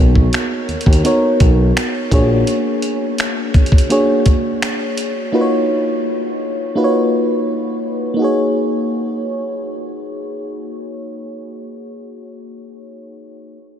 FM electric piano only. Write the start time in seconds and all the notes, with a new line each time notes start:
Already playing: B3 D#4 F#4 A#4 C#5
1.04 B3 D#4 F#4 A#4 C#5
2.11 A#3 D4 F#4 G#4 C#5
3.89 A#3 D4 F#4 G#4 C#5
5.32 A#3 D#4 F4 F#4 B4
5.41 C#5
6.75 A#3 D#4 F4 F#4 B4
6.84 C#5
8.14 A#3 D#4
8.19 F#4 G#4
8.24 C#5